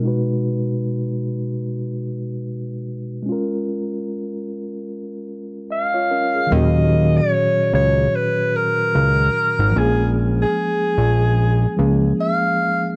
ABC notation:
X:1
M:4/4
L:1/16
Q:"Swing 16ths" 1/4=74
K:Ebm
V:1 name="Alto saxophone"
z16 | z12 f4 | e3 d3 d2 c2 B6 | A2 z A8 z f4 |]
V:2 name="Tine electric piano"
z16 | z12 e [Fd] [DB] A- | A z12 z3 | z16 |]
V:3 name="Tine electric piano"
[C,A,EGc]16 | [A,DFB]12 z4 | [B,,E,G,DG]16 | [F,A,B,DA]8- [F,A,B,DA]2 [F,A,B,DA]6 |]
V:4 name="Analog synth bass" clef=bass
z16 | z16 | E,,4 z2 D,,2 z4 D,,2 z A,,, | B,,,4 z2 B,,,4 D,,2 z4 |]